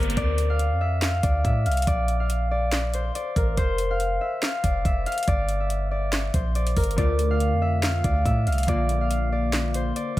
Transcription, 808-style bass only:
0.00 0.16 G1 loud
0.17 0.72 D2 loud
0.71 1.21 F2 loud
1.23 1.44 D2 loud
1.45 1.67 A2 loud
1.66 1.86 C2 loud
1.87 3.11 A#1 loud
3.36 3.57 A1 loud
3.57 4.19 F1 loud
4.64 4.84 F1 loud
4.85 5.06 F1 loud
5.28 6.30 G1 loud
6.34 6.75 A#1 loud
6.77 6.97 G1 loud
6.98 7.53 D2 loud
7.52 8.02 F2 loud
8.04 8.25 D2 loud
8.26 8.48 A2 loud
8.47 8.67 C2 loud
8.68 9.92 A#1 loud

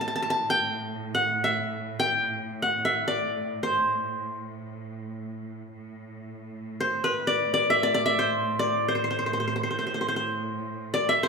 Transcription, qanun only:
0.01 0.07 A5 medium
0.08 0.15 A5 medium
0.16 0.22 A5 medium
0.23 0.30 A5 medium
0.30 1.07 A5 medium
0.50 1.21 G5 medium
1.15 2.06 F#5 medium
1.44 2.36 E5 medium
2.00 2.68 G5 medium
2.62 3.49 F#5 medium
2.85 3.77 E5 medium
3.08 4.06 D5 medium
3.63 5.70 C5 medium
6.80 7.10 C5 medium
7.04 8.14 B4 medium
7.27 7.53 D5 medium
7.54 7.83 D5 medium
7.70 8.05 E5 medium
7.83 7.94 D5 medium
7.94 8.59 D5 medium
8.06 8.97 E5 medium
8.19 8.88 C5 medium
8.59 9.58 D5 medium
8.88 8.95 C5 medium
8.95 9.04 C5 soft
9.04 9.10 C5 soft
9.11 9.18 C5 soft
9.19 9.26 C5 soft
9.26 9.33 C5 soft
9.33 9.40 C5 soft
9.40 9.47 C5 soft
9.48 9.55 C5 soft
9.56 9.63 C5 soft
9.63 9.70 C5 soft
9.71 9.78 C5 soft
9.79 9.86 C5 soft
9.87 9.94 C5 soft
9.94 10.00 C5 soft
10.01 10.08 C5 soft
10.08 10.16 C5 medium
10.16 11.22 C5 soft
10.94 11.10 D5 medium
11.09 11.23 E5 medium
11.23 11.28 C5 medium

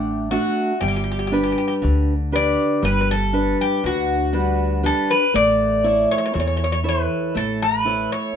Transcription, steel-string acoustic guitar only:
0.00 0.30 A3 soft
0.00 0.30 D4 soft
0.00 0.62 F#5 medium
0.31 0.71 A3 soft
0.31 0.72 D4 soft
0.31 0.72 F#4 medium
0.82 1.80 G3 medium
1.32 2.12 D4 soft
1.32 2.13 G4 soft
1.32 2.13 B4 medium
1.82 2.80 D3 medium
2.32 3.13 D4 soft
2.32 3.13 G4 soft
2.32 3.13 B4 soft
2.82 3.80 G3 medium
3.33 4.14 D4 soft
3.33 4.14 B4 medium
3.83 4.81 D3 medium
4.33 5.14 G3 soft
4.33 4.82 D4 soft
4.33 4.83 B4 soft
4.83 5.24 D4 soft
4.83 5.24 G4 soft
4.83 5.24 B4 medium
5.34 6.32 A3 medium
5.84 6.65 E4 soft
5.84 6.65 A4 soft
5.84 6.65 C#5 soft
6.34 7.32 E3 medium
6.84 7.65 E4 soft
6.84 7.65 A4 soft
6.84 7.65 C#5 medium
7.35 8.32 A3 medium
7.85 8.36 E4 soft
7.85 8.36 A4 soft
7.85 8.36 C#5 soft

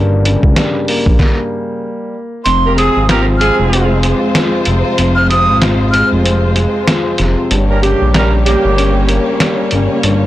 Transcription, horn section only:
2.65 2.75 A#3 medium
2.65 2.75 G4 medium
2.65 2.75 A#4 loud
2.77 3.02 F3 medium
2.77 3.02 C4 medium
2.77 3.02 G#4 loud
3.09 3.24 A#3 medium
3.09 3.24 G4 medium
3.09 3.24 A#4 loud
3.38 3.99 F3 medium
3.38 3.99 C4 medium
3.38 3.99 G#4 loud
7.70 7.80 G3 medium
7.70 7.80 C#4 medium
7.70 7.80 A#4 medium
7.82 8.07 C#3 medium
7.82 8.07 A#3 medium
7.82 8.07 G4 loud
8.15 8.30 G3 medium
8.15 8.30 C#4 medium
8.15 8.30 A#4 loud
8.44 9.04 C#3 medium
8.44 9.04 A#3 medium
8.44 9.04 G4 loud

